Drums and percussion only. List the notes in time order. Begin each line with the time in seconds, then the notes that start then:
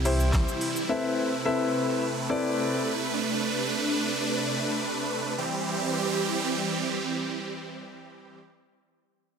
0.05 open hi-hat, shaker
0.20 shaker
0.33 kick, snare, clap, closed hi-hat, shaker
0.48 shaker
0.61 open hi-hat, shaker
0.76 shaker